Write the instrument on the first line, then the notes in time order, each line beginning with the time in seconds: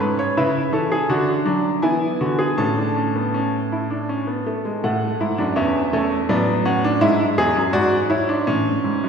grand piano
Already playing: C#4
0.00 G#2 B4
0.19 C#5
0.37 C#3 E4 B4 E5
0.72 E3 C#4 A4
0.92 G#4
1.09 D3 D4 F#4
1.45 F#3 D4
1.82 E3 B3 E4 G#5
2.21 D3 F#4
2.39 G#4
2.58 A2 C#4 A4 A5
2.77 D4
2.96 C#4
3.16 B3
3.34 C#4
3.72 E4
3.90 D4
4.09 C#4
4.27 B3
4.46 A3
4.65 G#3
4.84 A2 A3 F#5
5.21 G#2 E4
5.38 F#2 D4
5.56 E2 B3 C#4 E5
5.93 A3 C#4
6.29 A2 F#3 B3 D5
6.65 C#4 F#5
6.84 D4
7.01 G#2 G#3 E4 E5
7.38 E2 G#4
7.56 F#2
7.73 G#2 F#4 D5
8.10 E4 C#5
8.29 D4
8.47 A2 E3 C#4
8.84 G#2
9.04 F#2